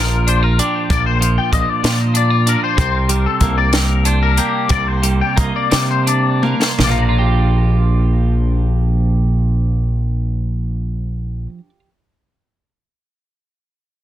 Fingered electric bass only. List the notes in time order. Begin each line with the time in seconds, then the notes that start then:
Already playing: A#1
0.90 A#1
1.53 A#1
1.84 A#2
2.78 C2
3.41 C2
4.70 C2
5.37 C2
5.73 C3
6.79 A#1